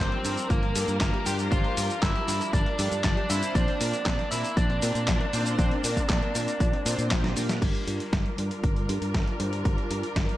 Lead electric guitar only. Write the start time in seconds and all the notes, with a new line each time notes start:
0.00 C4 C5
0.50 A#3 A#4
1.01 A#3 A#4
1.26 G4 G5
1.51 F4 F5
2.03 E4 E5
2.54 D4 D5
3.04 D4 D5
3.30 E4 E5
3.55 D4 D5
4.31 E4 E5
4.57 D4 D5